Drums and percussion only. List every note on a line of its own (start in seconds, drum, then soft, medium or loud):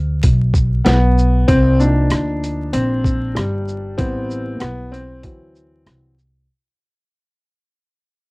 0.23 kick medium
0.23 closed hi-hat loud
0.54 kick medium
0.54 shaker medium
0.86 snare loud
0.86 closed hi-hat medium
1.18 shaker soft
1.48 kick loud
1.48 closed hi-hat medium
1.80 shaker medium
2.10 cross-stick loud
2.10 closed hi-hat medium
2.44 closed hi-hat soft
2.44 shaker soft
2.73 closed hi-hat medium
3.04 kick medium
3.04 shaker medium
3.36 cross-stick medium
3.36 closed hi-hat medium
3.68 shaker soft
3.99 kick loud
3.99 closed hi-hat medium
4.30 shaker medium
4.60 cross-stick loud
4.60 closed hi-hat medium
4.94 closed hi-hat soft
4.94 shaker soft
5.23 kick medium
5.23 closed hi-hat medium
5.56 shaker medium
5.87 cross-stick medium
5.87 closed hi-hat medium
6.18 shaker soft